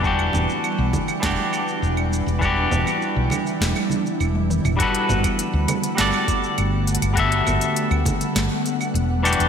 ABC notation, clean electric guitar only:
X:1
M:4/4
L:1/8
Q:1/4=101
K:G
V:1 name="Clean electric guitar"
[E,DFG]4 [E,DFG]4 | [E,DFG]6- [E,DFG] z | [G,FAB]4 [G,FAd]4 | [G,FAe]6- [G,FAe] [E,DFG] |]